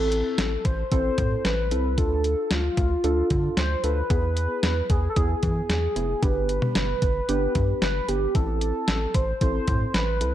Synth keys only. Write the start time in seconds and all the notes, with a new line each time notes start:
Already playing: C4 E4 A4
0.92 C4 E4 A4
1.71 C4 E4 A4
1.98 D4 F4 A4
3.04 D4 F4 A4
3.84 D4 F4 A4
4.10 B3 E4 G#4
5.16 B3 E4 G#4
5.96 B3 E4 G#4
6.23 B3 D4 G4
7.29 B3 D4 G4
8.08 B3 D4 G4
8.35 C4 E4 A4
9.41 C4 E4 A4
10.21 C4 E4 A4